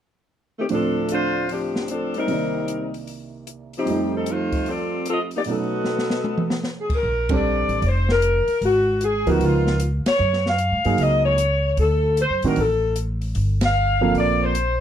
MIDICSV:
0, 0, Header, 1, 6, 480
1, 0, Start_track
1, 0, Key_signature, -2, "major"
1, 0, Tempo, 396040
1, 839, Time_signature, 4, 2, 24, 8
1, 17942, End_track
2, 0, Start_track
2, 0, Title_t, "Saxophone section"
2, 0, Program_c, 0, 65
2, 711, Note_on_c, 0, 67, 70
2, 715, Note_on_c, 0, 57, 60
2, 720, Note_on_c, 0, 51, 61
2, 721, Note_on_c, 0, 60, 60
2, 777, Note_off_c, 0, 67, 0
2, 781, Note_off_c, 0, 57, 0
2, 784, Note_off_c, 0, 51, 0
2, 785, Note_off_c, 0, 60, 0
2, 860, Note_on_c, 0, 60, 78
2, 864, Note_on_c, 0, 69, 87
2, 870, Note_on_c, 0, 62, 74
2, 871, Note_on_c, 0, 53, 75
2, 1297, Note_off_c, 0, 60, 0
2, 1299, Note_off_c, 0, 69, 0
2, 1302, Note_off_c, 0, 62, 0
2, 1303, Note_off_c, 0, 53, 0
2, 1343, Note_on_c, 0, 57, 80
2, 1345, Note_on_c, 0, 72, 100
2, 1349, Note_on_c, 0, 65, 83
2, 1351, Note_on_c, 0, 62, 84
2, 1778, Note_off_c, 0, 57, 0
2, 1779, Note_off_c, 0, 72, 0
2, 1781, Note_off_c, 0, 65, 0
2, 1782, Note_off_c, 0, 62, 0
2, 1817, Note_on_c, 0, 62, 63
2, 1818, Note_on_c, 0, 53, 61
2, 1819, Note_on_c, 0, 60, 65
2, 1825, Note_on_c, 0, 67, 73
2, 2255, Note_off_c, 0, 62, 0
2, 2256, Note_off_c, 0, 53, 0
2, 2256, Note_off_c, 0, 60, 0
2, 2260, Note_off_c, 0, 67, 0
2, 2303, Note_on_c, 0, 62, 74
2, 2308, Note_on_c, 0, 60, 74
2, 2312, Note_on_c, 0, 53, 64
2, 2315, Note_on_c, 0, 69, 81
2, 2606, Note_off_c, 0, 62, 0
2, 2608, Note_off_c, 0, 60, 0
2, 2610, Note_off_c, 0, 53, 0
2, 2611, Note_off_c, 0, 69, 0
2, 2619, Note_on_c, 0, 55, 67
2, 2624, Note_on_c, 0, 60, 68
2, 2627, Note_on_c, 0, 63, 67
2, 2628, Note_on_c, 0, 70, 80
2, 3518, Note_off_c, 0, 55, 0
2, 3521, Note_off_c, 0, 60, 0
2, 3522, Note_off_c, 0, 63, 0
2, 3522, Note_off_c, 0, 70, 0
2, 4566, Note_on_c, 0, 67, 71
2, 4567, Note_on_c, 0, 53, 64
2, 4568, Note_on_c, 0, 63, 63
2, 4572, Note_on_c, 0, 60, 67
2, 4988, Note_off_c, 0, 67, 0
2, 4989, Note_off_c, 0, 53, 0
2, 4989, Note_off_c, 0, 63, 0
2, 4991, Note_off_c, 0, 60, 0
2, 5037, Note_on_c, 0, 69, 73
2, 5041, Note_on_c, 0, 60, 62
2, 5041, Note_on_c, 0, 63, 57
2, 5046, Note_on_c, 0, 53, 62
2, 5181, Note_off_c, 0, 69, 0
2, 5183, Note_off_c, 0, 60, 0
2, 5183, Note_off_c, 0, 63, 0
2, 5185, Note_off_c, 0, 53, 0
2, 5204, Note_on_c, 0, 72, 88
2, 5207, Note_on_c, 0, 57, 74
2, 5214, Note_on_c, 0, 63, 70
2, 5216, Note_on_c, 0, 65, 76
2, 5662, Note_off_c, 0, 72, 0
2, 5664, Note_off_c, 0, 57, 0
2, 5667, Note_off_c, 0, 63, 0
2, 5668, Note_off_c, 0, 65, 0
2, 5677, Note_on_c, 0, 69, 73
2, 5684, Note_on_c, 0, 74, 88
2, 5687, Note_on_c, 0, 65, 72
2, 5693, Note_on_c, 0, 60, 77
2, 6139, Note_off_c, 0, 69, 0
2, 6142, Note_off_c, 0, 74, 0
2, 6144, Note_off_c, 0, 65, 0
2, 6146, Note_off_c, 0, 60, 0
2, 6155, Note_on_c, 0, 69, 78
2, 6167, Note_on_c, 0, 75, 92
2, 6168, Note_on_c, 0, 60, 81
2, 6171, Note_on_c, 0, 65, 84
2, 6289, Note_off_c, 0, 69, 0
2, 6298, Note_off_c, 0, 75, 0
2, 6299, Note_off_c, 0, 60, 0
2, 6301, Note_off_c, 0, 65, 0
2, 6491, Note_on_c, 0, 63, 71
2, 6491, Note_on_c, 0, 67, 68
2, 6500, Note_on_c, 0, 74, 88
2, 6502, Note_on_c, 0, 58, 70
2, 6552, Note_off_c, 0, 67, 0
2, 6553, Note_off_c, 0, 63, 0
2, 6560, Note_off_c, 0, 74, 0
2, 6561, Note_off_c, 0, 58, 0
2, 6648, Note_on_c, 0, 59, 85
2, 6653, Note_on_c, 0, 69, 80
2, 6655, Note_on_c, 0, 75, 89
2, 6658, Note_on_c, 0, 66, 83
2, 8015, Note_off_c, 0, 59, 0
2, 8018, Note_off_c, 0, 69, 0
2, 8019, Note_off_c, 0, 75, 0
2, 8021, Note_off_c, 0, 66, 0
2, 8254, Note_on_c, 0, 68, 60
2, 8360, Note_off_c, 0, 68, 0
2, 8424, Note_on_c, 0, 70, 81
2, 8869, Note_off_c, 0, 70, 0
2, 8893, Note_on_c, 0, 74, 82
2, 9509, Note_off_c, 0, 74, 0
2, 9535, Note_on_c, 0, 72, 83
2, 9822, Note_off_c, 0, 72, 0
2, 9838, Note_on_c, 0, 70, 84
2, 10418, Note_off_c, 0, 70, 0
2, 10492, Note_on_c, 0, 66, 92
2, 10914, Note_off_c, 0, 66, 0
2, 10962, Note_on_c, 0, 68, 92
2, 11255, Note_off_c, 0, 68, 0
2, 11282, Note_on_c, 0, 66, 74
2, 11423, Note_off_c, 0, 66, 0
2, 11448, Note_on_c, 0, 65, 90
2, 11904, Note_off_c, 0, 65, 0
2, 12218, Note_on_c, 0, 73, 96
2, 12653, Note_off_c, 0, 73, 0
2, 12712, Note_on_c, 0, 77, 95
2, 13338, Note_off_c, 0, 77, 0
2, 13356, Note_on_c, 0, 75, 94
2, 13640, Note_on_c, 0, 73, 94
2, 13651, Note_off_c, 0, 75, 0
2, 14236, Note_off_c, 0, 73, 0
2, 14299, Note_on_c, 0, 69, 85
2, 14768, Note_off_c, 0, 69, 0
2, 14788, Note_on_c, 0, 72, 94
2, 15066, Note_off_c, 0, 72, 0
2, 15120, Note_on_c, 0, 70, 77
2, 15261, Note_off_c, 0, 70, 0
2, 15279, Note_on_c, 0, 69, 78
2, 15705, Note_off_c, 0, 69, 0
2, 16539, Note_on_c, 0, 77, 94
2, 17125, Note_off_c, 0, 77, 0
2, 17186, Note_on_c, 0, 74, 90
2, 17463, Note_off_c, 0, 74, 0
2, 17484, Note_on_c, 0, 72, 90
2, 17942, Note_off_c, 0, 72, 0
2, 17942, End_track
3, 0, Start_track
3, 0, Title_t, "Upright piano"
3, 0, Program_c, 1, 0
3, 836, Note_on_c, 1, 38, 42
3, 843, Note_on_c, 1, 53, 42
3, 847, Note_on_c, 1, 45, 43
3, 850, Note_on_c, 1, 62, 56
3, 854, Note_on_c, 1, 60, 43
3, 2754, Note_on_c, 1, 36, 40
3, 2758, Note_off_c, 1, 38, 0
3, 2762, Note_off_c, 1, 53, 0
3, 2763, Note_off_c, 1, 45, 0
3, 2765, Note_off_c, 1, 62, 0
3, 2767, Note_off_c, 1, 60, 0
3, 2769, Note_on_c, 1, 48, 35
3, 2783, Note_on_c, 1, 51, 37
3, 2798, Note_on_c, 1, 58, 36
3, 2814, Note_on_c, 1, 74, 46
3, 4670, Note_on_c, 1, 41, 45
3, 4677, Note_off_c, 1, 36, 0
3, 4682, Note_on_c, 1, 53, 46
3, 4684, Note_off_c, 1, 48, 0
3, 4692, Note_off_c, 1, 51, 0
3, 4693, Note_on_c, 1, 55, 44
3, 4699, Note_off_c, 1, 58, 0
3, 4707, Note_off_c, 1, 74, 0
3, 4717, Note_on_c, 1, 57, 42
3, 4730, Note_on_c, 1, 63, 53
3, 6595, Note_off_c, 1, 41, 0
3, 6601, Note_off_c, 1, 53, 0
3, 6601, Note_off_c, 1, 57, 0
3, 6607, Note_off_c, 1, 55, 0
3, 6611, Note_on_c, 1, 54, 41
3, 6612, Note_on_c, 1, 47, 46
3, 6619, Note_off_c, 1, 63, 0
3, 6619, Note_on_c, 1, 57, 42
3, 6629, Note_on_c, 1, 61, 45
3, 6637, Note_on_c, 1, 63, 50
3, 8526, Note_off_c, 1, 47, 0
3, 8526, Note_off_c, 1, 54, 0
3, 8530, Note_off_c, 1, 57, 0
3, 8535, Note_off_c, 1, 61, 0
3, 8539, Note_off_c, 1, 63, 0
3, 8846, Note_on_c, 1, 60, 64
3, 8847, Note_on_c, 1, 62, 60
3, 8848, Note_on_c, 1, 69, 69
3, 8851, Note_on_c, 1, 55, 61
3, 9452, Note_off_c, 1, 60, 0
3, 9453, Note_off_c, 1, 62, 0
3, 9454, Note_off_c, 1, 69, 0
3, 9455, Note_off_c, 1, 55, 0
3, 11229, Note_on_c, 1, 53, 71
3, 11236, Note_on_c, 1, 59, 71
3, 11236, Note_on_c, 1, 70, 82
3, 11238, Note_on_c, 1, 63, 64
3, 11844, Note_off_c, 1, 53, 0
3, 11847, Note_off_c, 1, 59, 0
3, 11847, Note_off_c, 1, 70, 0
3, 11848, Note_off_c, 1, 63, 0
3, 13154, Note_on_c, 1, 54, 69
3, 13154, Note_on_c, 1, 58, 56
3, 13159, Note_on_c, 1, 63, 58
3, 13161, Note_on_c, 1, 68, 73
3, 13765, Note_off_c, 1, 54, 0
3, 13765, Note_off_c, 1, 58, 0
3, 13768, Note_off_c, 1, 63, 0
3, 13769, Note_off_c, 1, 68, 0
3, 15081, Note_on_c, 1, 51, 68
3, 15086, Note_on_c, 1, 60, 65
3, 15091, Note_on_c, 1, 62, 56
3, 15093, Note_on_c, 1, 66, 74
3, 15225, Note_off_c, 1, 51, 0
3, 15227, Note_off_c, 1, 60, 0
3, 15230, Note_off_c, 1, 62, 0
3, 15231, Note_off_c, 1, 66, 0
3, 16980, Note_on_c, 1, 53, 70
3, 16983, Note_on_c, 1, 60, 63
3, 16985, Note_on_c, 1, 58, 65
3, 16988, Note_on_c, 1, 69, 71
3, 17596, Note_off_c, 1, 53, 0
3, 17598, Note_off_c, 1, 60, 0
3, 17599, Note_off_c, 1, 58, 0
3, 17600, Note_off_c, 1, 69, 0
3, 17942, End_track
4, 0, Start_track
4, 0, Title_t, "Upright bass"
4, 0, Program_c, 2, 32
4, 8520, Note_on_c, 2, 34, 79
4, 9266, Note_off_c, 2, 34, 0
4, 9309, Note_on_c, 2, 33, 68
4, 9466, Note_off_c, 2, 33, 0
4, 9476, Note_on_c, 2, 29, 79
4, 10223, Note_off_c, 2, 29, 0
4, 10440, Note_on_c, 2, 32, 84
4, 11185, Note_off_c, 2, 32, 0
4, 11226, Note_on_c, 2, 38, 65
4, 11379, Note_off_c, 2, 38, 0
4, 11386, Note_on_c, 2, 37, 87
4, 12138, Note_off_c, 2, 37, 0
4, 12353, Note_on_c, 2, 42, 85
4, 12950, Note_off_c, 2, 42, 0
4, 12987, Note_on_c, 2, 44, 58
4, 13141, Note_off_c, 2, 44, 0
4, 13150, Note_on_c, 2, 43, 69
4, 13293, Note_off_c, 2, 43, 0
4, 13300, Note_on_c, 2, 37, 83
4, 14220, Note_off_c, 2, 37, 0
4, 14267, Note_on_c, 2, 38, 81
4, 14866, Note_off_c, 2, 38, 0
4, 14907, Note_on_c, 2, 42, 59
4, 15060, Note_off_c, 2, 42, 0
4, 15072, Note_on_c, 2, 45, 66
4, 15223, Note_off_c, 2, 45, 0
4, 15234, Note_on_c, 2, 33, 88
4, 16146, Note_off_c, 2, 33, 0
4, 16184, Note_on_c, 2, 31, 78
4, 17100, Note_off_c, 2, 31, 0
4, 17142, Note_on_c, 2, 34, 86
4, 17942, Note_off_c, 2, 34, 0
4, 17942, End_track
5, 0, Start_track
5, 0, Title_t, "Muted upright bass strokes"
5, 10270, Note_on_c, 9, 29, 37
5, 10391, Note_off_c, 9, 29, 0
5, 17942, End_track
6, 0, Start_track
6, 0, Title_t, "Drums"
6, 837, Note_on_c, 9, 46, 38
6, 958, Note_off_c, 9, 46, 0
6, 1316, Note_on_c, 9, 42, 44
6, 1437, Note_off_c, 9, 42, 0
6, 1807, Note_on_c, 9, 46, 37
6, 1928, Note_off_c, 9, 46, 0
6, 2129, Note_on_c, 9, 38, 45
6, 2250, Note_off_c, 9, 38, 0
6, 2280, Note_on_c, 9, 42, 45
6, 2401, Note_off_c, 9, 42, 0
6, 2595, Note_on_c, 9, 46, 30
6, 2717, Note_off_c, 9, 46, 0
6, 2764, Note_on_c, 9, 46, 38
6, 2885, Note_off_c, 9, 46, 0
6, 3249, Note_on_c, 9, 42, 48
6, 3370, Note_off_c, 9, 42, 0
6, 3565, Note_on_c, 9, 46, 31
6, 3686, Note_off_c, 9, 46, 0
6, 3725, Note_on_c, 9, 46, 35
6, 3847, Note_off_c, 9, 46, 0
6, 4206, Note_on_c, 9, 42, 47
6, 4328, Note_off_c, 9, 42, 0
6, 4526, Note_on_c, 9, 46, 34
6, 4647, Note_off_c, 9, 46, 0
6, 4688, Note_on_c, 9, 46, 40
6, 4809, Note_off_c, 9, 46, 0
6, 5166, Note_on_c, 9, 42, 45
6, 5287, Note_off_c, 9, 42, 0
6, 5482, Note_on_c, 9, 36, 45
6, 5483, Note_on_c, 9, 46, 35
6, 5603, Note_off_c, 9, 36, 0
6, 5604, Note_off_c, 9, 46, 0
6, 5648, Note_on_c, 9, 46, 40
6, 5769, Note_off_c, 9, 46, 0
6, 6126, Note_on_c, 9, 42, 47
6, 6247, Note_off_c, 9, 42, 0
6, 6435, Note_on_c, 9, 46, 34
6, 6556, Note_off_c, 9, 46, 0
6, 6597, Note_on_c, 9, 46, 39
6, 6718, Note_off_c, 9, 46, 0
6, 7085, Note_on_c, 9, 38, 41
6, 7206, Note_off_c, 9, 38, 0
6, 7253, Note_on_c, 9, 38, 43
6, 7375, Note_off_c, 9, 38, 0
6, 7395, Note_on_c, 9, 38, 57
6, 7517, Note_off_c, 9, 38, 0
6, 7563, Note_on_c, 9, 48, 52
6, 7685, Note_off_c, 9, 48, 0
6, 7726, Note_on_c, 9, 47, 59
6, 7848, Note_off_c, 9, 47, 0
6, 7881, Note_on_c, 9, 38, 69
6, 8002, Note_off_c, 9, 38, 0
6, 8041, Note_on_c, 9, 38, 49
6, 8163, Note_off_c, 9, 38, 0
6, 8358, Note_on_c, 9, 36, 65
6, 8360, Note_on_c, 9, 49, 56
6, 8479, Note_off_c, 9, 36, 0
6, 8482, Note_off_c, 9, 49, 0
6, 8836, Note_on_c, 9, 51, 67
6, 8840, Note_on_c, 9, 36, 76
6, 8958, Note_off_c, 9, 51, 0
6, 8961, Note_off_c, 9, 36, 0
6, 9321, Note_on_c, 9, 46, 36
6, 9443, Note_off_c, 9, 46, 0
6, 9481, Note_on_c, 9, 46, 39
6, 9602, Note_off_c, 9, 46, 0
6, 9802, Note_on_c, 9, 38, 46
6, 9923, Note_off_c, 9, 38, 0
6, 9963, Note_on_c, 9, 42, 54
6, 10084, Note_off_c, 9, 42, 0
6, 10274, Note_on_c, 9, 46, 36
6, 10395, Note_off_c, 9, 46, 0
6, 10443, Note_on_c, 9, 46, 45
6, 10564, Note_off_c, 9, 46, 0
6, 10918, Note_on_c, 9, 42, 47
6, 11039, Note_off_c, 9, 42, 0
6, 11233, Note_on_c, 9, 46, 37
6, 11355, Note_off_c, 9, 46, 0
6, 11401, Note_on_c, 9, 46, 45
6, 11522, Note_off_c, 9, 46, 0
6, 11717, Note_on_c, 9, 38, 45
6, 11838, Note_off_c, 9, 38, 0
6, 11873, Note_on_c, 9, 42, 55
6, 11994, Note_off_c, 9, 42, 0
6, 12192, Note_on_c, 9, 51, 65
6, 12197, Note_on_c, 9, 38, 75
6, 12313, Note_off_c, 9, 51, 0
6, 12318, Note_off_c, 9, 38, 0
6, 12520, Note_on_c, 9, 38, 30
6, 12641, Note_off_c, 9, 38, 0
6, 12678, Note_on_c, 9, 38, 42
6, 12799, Note_off_c, 9, 38, 0
6, 12828, Note_on_c, 9, 42, 45
6, 12949, Note_off_c, 9, 42, 0
6, 13144, Note_on_c, 9, 46, 36
6, 13266, Note_off_c, 9, 46, 0
6, 13307, Note_on_c, 9, 46, 44
6, 13428, Note_off_c, 9, 46, 0
6, 13792, Note_on_c, 9, 42, 56
6, 13913, Note_off_c, 9, 42, 0
6, 14268, Note_on_c, 9, 46, 45
6, 14389, Note_off_c, 9, 46, 0
6, 14751, Note_on_c, 9, 42, 47
6, 14872, Note_off_c, 9, 42, 0
6, 15057, Note_on_c, 9, 46, 39
6, 15179, Note_off_c, 9, 46, 0
6, 15223, Note_on_c, 9, 46, 46
6, 15344, Note_off_c, 9, 46, 0
6, 15703, Note_on_c, 9, 42, 56
6, 15824, Note_off_c, 9, 42, 0
6, 16016, Note_on_c, 9, 46, 37
6, 16137, Note_off_c, 9, 46, 0
6, 16178, Note_on_c, 9, 46, 43
6, 16299, Note_off_c, 9, 46, 0
6, 16495, Note_on_c, 9, 51, 63
6, 16500, Note_on_c, 9, 38, 78
6, 16617, Note_off_c, 9, 51, 0
6, 16621, Note_off_c, 9, 38, 0
6, 17148, Note_on_c, 9, 46, 38
6, 17269, Note_off_c, 9, 46, 0
6, 17632, Note_on_c, 9, 42, 53
6, 17753, Note_off_c, 9, 42, 0
6, 17942, End_track
0, 0, End_of_file